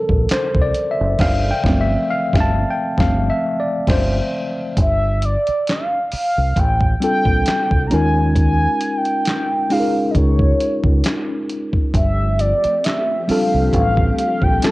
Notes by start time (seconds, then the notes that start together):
Already playing: F3 G3 C4 A4 A#4 C5
0.09 A#1, kick
0.29 C5, muted fingered electric bass stroke, snare, clap, closed hi-hat
0.54 C2, kick
0.62 D5
0.74 closed hi-hat
0.91 E5
1.01 F#1
1.19 G1 F5, kick, snare, crash
1.51 G5
1.64 G1 F3 A3 C4, kick, snare
1.81 E5
2.11 F5
2.33 G1, kick, snare
2.41 A5
2.70 G5
2.98 G1 F3 A3 C4 F5, kick, snare
3.30 E5
3.60 D5
3.87 G1 C5, kick, snare, crash
4.77 G1 E5, kick, closed hi-hat
5.22 D5, closed hi-hat
5.47 muted fingered electric bass stroke, closed hi-hat
5.67 F5, snare, clap, closed hi-hat
6.12 F5, muted fingered electric bass stroke, open hi-hat
6.38 C2
6.56 A1 G5, kick, closed hi-hat
6.81 kick
7.00 G3 C4 D4 F4 A4 G5, closed hi-hat
7.25 A#1, kick
7.46 snare, clap, closed hi-hat
7.71 C2, kick
7.87 G#3 A#5
7.91 D#2 C#4 D#4 F4 A#4 G#5, closed hi-hat
8.35 G#5, kick, closed hi-hat
8.81 closed hi-hat
8.97 G5
9.05 closed hi-hat
9.25 snare, clap, closed hi-hat
9.70 G#3 C#4 D#4 F4 G#4 F5, open hi-hat
9.80 A#4
10.11 D#5
10.15 C#2 C#5, kick, closed hi-hat
10.39 kick
10.60 closed hi-hat
10.84 C#2, kick
11.04 snare, clap, closed hi-hat
11.49 closed hi-hat
11.73 kick
11.93 G1 F3 A3 C4 G4 E5, kick, closed hi-hat
12.39 D5, closed hi-hat
12.64 muted fingered electric bass stroke, closed hi-hat
12.84 E5, snare, clap, closed hi-hat
13.28 G3 C4 D4 F4 A4 F5, muted fingered electric bass stroke, open hi-hat
13.54 C2
13.73 A1 F5, kick, closed hi-hat
13.97 kick
14.18 F5, closed hi-hat
14.42 A#1 G5, kick
14.62 G3 C4 D4 F4 A4 A5, muted fingered electric bass stroke, snare, clap, closed hi-hat